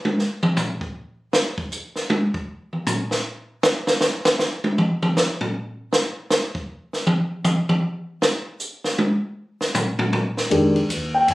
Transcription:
0.05 high tom
0.19 snare
0.43 mid tom
0.57 floor tom, hi-hat pedal
0.81 kick
1.33 snare
1.58 kick
1.72 hi-hat pedal
1.96 snare
2.10 high tom
2.34 kick
2.73 mid tom
2.87 floor tom, hi-hat pedal
3.11 snare
3.63 snare
3.87 snare
4.01 snare, hi-hat pedal
4.25 snare
4.39 snare
4.64 high tom
4.78 mid tom
5.03 mid tom
5.17 snare, hi-hat pedal
5.41 floor tom
5.93 snare
6.30 snare, hi-hat pedal
6.55 kick
6.93 snare
7.07 mid tom
7.45 hi-hat pedal, mid tom
7.69 mid tom
8.22 snare
8.60 hi-hat pedal
8.84 snare
8.98 high tom
9.61 snare
9.75 floor tom, hi-hat pedal
9.99 floor tom
10.13 floor tom
10.37 snare
10.50 upright bass F2, grand piano D#3 G#3 D4 G4, ride
10.76 ride
10.89 upright bass D#2, hi-hat pedal, ride
11.14 grand piano G5
11.28 upright bass G2, grand piano G#5, ride

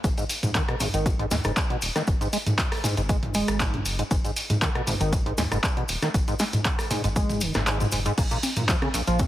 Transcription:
0.04 analog synth bass G#1, acid bass G#2, kick, closed hi-hat, maracas
0.18 acid bass G#2, closed hi-hat, maracas
0.29 open hi-hat, maracas
0.43 analog synth bass G#2, closed hi-hat, mid tom, maracas
0.55 acid bass D#3, kick, clap, closed hi-hat, maracas
0.68 acid bass B2, cross-stick, closed hi-hat
0.80 acid bass G#1, mid tom, open hi-hat, maracas
0.94 analog synth bass G#1, acid bass D#3, closed hi-hat, maracas
1.06 acid bass G#2, kick, closed hi-hat, maracas
1.19 acid bass G#2, closed hi-hat
1.31 analog synth bass D#2, acid bass G#3, snare, mid tom, open hi-hat, maracas
1.44 analog synth bass F#1, acid bass G#2, cross-stick, closed hi-hat, maracas
1.57 kick, clap, closed hi-hat, maracas
1.70 acid bass B2, closed hi-hat
1.82 analog synth bass D#1, open hi-hat, maracas
1.96 acid bass D#3, cross-stick, snare, closed hi-hat, maracas
2.07 analog synth bass G#1, kick, closed hi-hat, maracas
2.21 acid bass G#2, closed hi-hat, maracas
2.33 acid bass G#3, open hi-hat, maracas
2.46 analog synth bass G#2, closed hi-hat, mid tom, maracas
2.58 kick, clap, closed hi-hat, maracas
2.72 cross-stick, open hi-hat
2.84 acid bass G#2, snare, mid tom, open hi-hat, maracas
2.97 analog synth bass G#1, acid bass G#2, closed hi-hat, maracas
3.09 acid bass G#3, kick, closed hi-hat, maracas
3.23 closed hi-hat, mid tom
3.34 analog synth bass D#1, acid bass G#3, open hi-hat, maracas
3.48 analog synth bass G#1, cross-stick, closed hi-hat, maracas
3.60 acid bass G#2, kick, clap, closed hi-hat, maracas
3.74 acid bass F#2, closed hi-hat, mid tom
3.85 analog synth bass F#1, open hi-hat, maracas
3.99 acid bass G#2, closed hi-hat, maracas
4.11 analog synth bass G#1, acid bass G#2, kick, closed hi-hat, maracas
4.24 acid bass G#2, closed hi-hat, maracas
4.36 open hi-hat, maracas
4.50 analog synth bass G#2, closed hi-hat, mid tom, maracas
4.62 acid bass D#3, kick, clap, closed hi-hat, maracas
4.75 acid bass B2, cross-stick, closed hi-hat
4.87 acid bass G#1, mid tom, open hi-hat, maracas
5.00 analog synth bass G#1, acid bass D#3, closed hi-hat, maracas
5.13 acid bass G#2, kick, closed hi-hat, maracas
5.26 acid bass G#2, closed hi-hat
5.38 analog synth bass D#2, acid bass G#3, snare, mid tom, open hi-hat, maracas
5.51 analog synth bass F#1, acid bass G#2, cross-stick, closed hi-hat, maracas
5.63 kick, clap, closed hi-hat, maracas
5.77 acid bass B2, closed hi-hat
5.89 analog synth bass D#1, open hi-hat, maracas
6.02 acid bass D#3, cross-stick, snare, closed hi-hat, maracas
6.14 analog synth bass G#1, kick, closed hi-hat, maracas
6.28 acid bass G#2, closed hi-hat, maracas
6.39 acid bass G#3, snare, open hi-hat, maracas
6.53 analog synth bass G#2, closed hi-hat, mid tom, maracas
6.65 kick, clap, closed hi-hat, maracas
6.79 cross-stick, open hi-hat, maracas
6.91 acid bass G#2, snare, mid tom, open hi-hat, maracas
7.04 analog synth bass G#1, acid bass G#2, closed hi-hat, maracas
7.16 acid bass G#3, kick, closed hi-hat, maracas
7.30 closed hi-hat, mid tom, maracas
7.41 analog synth bass D#1, acid bass D#3, open hi-hat, maracas
7.54 analog synth bass G#1, acid bass G#2, cross-stick, snare, closed hi-hat, maracas
7.67 acid bass G#2, clap, closed hi-hat, maracas
7.80 acid bass G#2, closed hi-hat, mid tom, maracas
7.92 analog synth bass F#1, acid bass G#2, open hi-hat, maracas
8.05 acid bass G#2, closed hi-hat, maracas
8.18 analog synth bass A#1, acid bass A#2, kick, closed hi-hat, crash, maracas
8.31 acid bass A#2, closed hi-hat, maracas
8.43 open hi-hat, high conga, maracas
8.56 analog synth bass A#2, closed hi-hat, mid tom, maracas
8.68 acid bass F3, kick, clap, closed hi-hat, maracas
8.82 acid bass C#3, cross-stick, closed hi-hat, high conga
8.94 acid bass A#1, open hi-hat, maracas
9.07 analog synth bass A#1, acid bass F3, closed hi-hat, maracas
9.19 acid bass A#2, kick, closed hi-hat, high conga, maracas

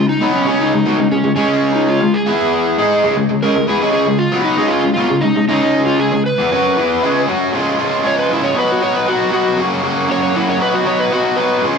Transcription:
Already playing: overdriven electric guitar C#3 G#3
0.09 electric slide guitar D#4
0.21 overdriven electric guitar B2 F#3 B3
0.36 electric slide guitar C#4
0.46 overdriven electric guitar C#3 G#3 C#4
0.61 electric slide guitar D#4
0.73 overdriven electric guitar C#3 G#3
0.85 overdriven electric guitar B2 F#3
0.99 overdriven electric guitar C#3 G#3
1.11 overdriven electric guitar C#3 G#3, electric slide guitar C#4
1.24 overdriven electric guitar C#3 G#3
1.36 overdriven electric guitar C#3 G#3 C#4, electric slide guitar C#4
1.75 electric slide guitar D#4
1.88 electric slide guitar F4
2.01 overdriven electric guitar C#3 G#3
2.14 electric slide guitar G#4
2.26 overdriven electric guitar E3 B3 E4
2.78 overdriven electric guitar G#3 D#4 G#4
3.03 overdriven electric guitar C#3 G#3
3.16 overdriven electric guitar C#3 G#3
3.29 overdriven electric guitar C#3 G#3
3.42 overdriven electric guitar C#3 G#3, electric slide guitar A#4
3.55 overdriven electric guitar C#3 G#3
3.67 overdriven electric guitar E3 B3, electric slide guitar G#4
3.80 overdriven electric guitar C#3 G#3 C#4
3.93 electric slide guitar G#4
4.06 overdriven electric guitar C#3 G#3
4.18 electric slide guitar F4
4.32 overdriven electric guitar B2 F#3 B3
4.44 electric slide guitar D#4
4.56 overdriven electric guitar C#3 G#3 C#4
4.68 electric slide guitar F4
4.83 overdriven electric guitar C#3 G#3
4.94 overdriven electric guitar B2 F#3, electric slide guitar F4
5.09 overdriven electric guitar C#3 G#3
5.21 overdriven electric guitar C#3 G#3, electric slide guitar D#4
5.35 overdriven electric guitar C#3 G#3
5.49 overdriven electric guitar C#3 G#3 C#4, electric slide guitar D#4
5.86 electric slide guitar F4
5.99 electric slide guitar G#4
6.12 overdriven electric guitar C#3 G#3
6.26 electric slide guitar B4
6.38 overdriven electric guitar E3 B3
6.52 overdriven electric guitar F#3 C#4 F#4
6.77 overdriven electric guitar E3 B3 E4
7.03 overdriven electric guitar C#3 G#3 C#4
7.27 overdriven electric guitar F#3 C#4 F#4
7.53 overdriven electric guitar C#3 F3 G#3 C#4 F4
7.78 overdriven electric guitar C#3 F3 G#3 C#4 F4
8.03 overdriven electric guitar C#3 F3 G#3 C#4 F4, electric slide guitar C#5
8.19 electric slide guitar B4
8.30 overdriven electric guitar C#3 F3 G#3 C#4 F4, electric slide guitar E4
8.44 electric slide guitar C#5
8.54 overdriven electric guitar B2 F#3 B3 D#4 F#4
8.59 electric slide guitar B4
8.72 electric slide guitar F#4
8.80 overdriven electric guitar B2 F#3 B3 D#4 F#4, electric slide guitar C#5
8.96 electric slide guitar B4
9.05 overdriven electric guitar B2 F#3 B3 D#4 F#4, electric slide guitar F#4
9.31 overdriven electric guitar B2 F#3 B3 D#4 F#4, electric slide guitar F#4
9.56 overdriven electric guitar F#2 C#3 F#3 A#3 C#4 F#4
9.82 overdriven electric guitar F#2 C#3 F#3 A#3 C#4 F#4
10.07 overdriven electric guitar F#2 C#3 F#3 A#3 C#4 F#4
10.11 electric slide guitar C#5
10.23 electric slide guitar C#5
10.33 overdriven electric guitar F#2 C#3 F#3 A#3 C#4 F#4, electric slide guitar E4
10.49 electric slide guitar C#5
10.59 overdriven electric guitar B2 F#3 B3 D#4 F#4, electric slide guitar B4
10.74 electric slide guitar F#4
10.85 overdriven electric guitar B2 F#3 B3 D#4 F#4, electric slide guitar C#5
10.99 electric slide guitar B4
11.11 overdriven electric guitar B2 F#3 B3 D#4 F#4, electric slide guitar F#4
11.36 overdriven electric guitar B2 F#3 B3 D#4 F#4, electric slide guitar B4
11.62 overdriven electric guitar C#3 F3 G#3 C#4 F4

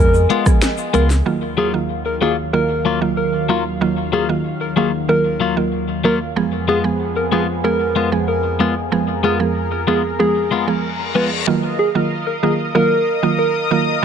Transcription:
Already playing: synth pluck F3 G#3, analog synth pad B3 G#4 D#5 G#5
0.00 sub bass F2, synth pluck B3 G#4, soft synth lead A#4
0.14 shaker
0.30 clean electric guitar G#3 B3 F4, closed hi-hat
0.46 synth pluck F3 G#3 B3 G#4, kick, cross-stick, shaker
0.62 finger snap, snare, closed hi-hat, shaker
0.78 shaker
0.93 sub bass C#2, synth pluck F3 G#3 B3 G#4, clean electric guitar G#3 B3 F4, soft synth lead A#4, closed hi-hat, shaker
1.10 snare, shaker
1.26 analog synth pad D#2 D#3 F#3 F5, synth pluck D#3 F#3 A#3 F4
1.57 clean electric guitar F#3 A#3 F4, soft synth lead G#4
1.73 synth pluck D#3 F#3 A#3 F4
2.06 soft synth lead A#4
2.21 synth pluck D#3 F#3 A#3 F4, clean electric guitar F#3 A#3 F4, soft synth lead G#4
2.53 synth pluck D#3 F#3 A#3 F4, soft synth lead A#4
2.85 clean electric guitar F#3 A#3 F4
3.01 synth pluck D#3 F#3 A#3 F4, muted clean electric guitar stroke
3.17 soft synth lead A#4
3.49 synth pluck D#3 F#3 A#3 F4, clean electric guitar F#3 A#3 F4
3.81 synth pluck D#3 F#3 A#3 F4
4.12 clean electric guitar F#3 A#3 F4, soft synth lead G#4
4.29 synth pluck D#3 F#3 A#3 F4
4.61 soft synth lead A#4
4.76 synth pluck D#3 F#3 A#3 F4, clean electric guitar F#3 A#3 F4, soft synth lead G#4
5.09 synth pluck D#3 F#3 A#3 F4, soft synth lead A#4
5.40 clean electric guitar F#3 A#3 F4
5.56 synth pluck D#3 F#3 A#3 F4
6.04 synth pluck D#3 F#3 A#3 F4, clean electric guitar F#3 A#3 F4, soft synth lead A#4
6.36 analog synth pad F2 F3 B3 G#4, synth pluck F3 G#3 B3 G#4
6.68 clean electric guitar G#3 B3 F4, soft synth lead G#4
6.84 synth pluck F3 G#3 B3 G#4
7.16 soft synth lead A#4
7.32 synth pluck F3 G#3 B3 G#4, clean electric guitar G#3 B3 F4, soft synth lead G#4
7.64 synth pluck F3 G#3 B3 G#4, soft synth lead A#4
7.96 clean electric guitar G#3 B3 F4
8.12 synth pluck F3 G#3 B3 G#4, muted clean electric guitar stroke
8.28 soft synth lead A#4
8.59 synth pluck F3 G#3 B3 G#4, clean electric guitar G#3 B3 F4
8.92 synth pluck F3 G#3 B3 G#4, analog synth pad A#4
9.23 clean electric guitar G#3 B3 F4, soft synth lead G#4
9.39 synth pluck F3 G#3 B3 G#4
9.72 soft synth lead A#4
9.87 synth pluck F3 G#3 B3 G#4, clean electric guitar G#3 B3 F4, soft synth lead G#4
10.19 synth pluck F3 G#3 B3 G#4, soft synth lead G#4, reverse cymbal
10.51 clean electric guitar G#3 B3 F4
10.67 synth pluck F3 G#3 B3 G#4
11.15 synth pluck F3 G#3 B3 G#4, clean electric guitar G#3 B3 F4, soft synth lead B4
11.47 synth pluck D#3 F#3 A#3 F4, analog synth pad A#4 D#5 F5 D#6
11.79 soft synth lead G#4
11.95 synth pluck D#3 F#3 A#3 F4
12.27 soft synth lead A#4
12.43 synth pluck D#3 F#3 A#3 F4, soft synth lead G#4
12.75 synth pluck D#3 F#3 A#3 F4, soft synth lead A#4
13.23 synth pluck D#3 F#3 A#3 F4
13.39 soft synth lead A#4
13.71 synth pluck D#3 F#3 A#3 F4

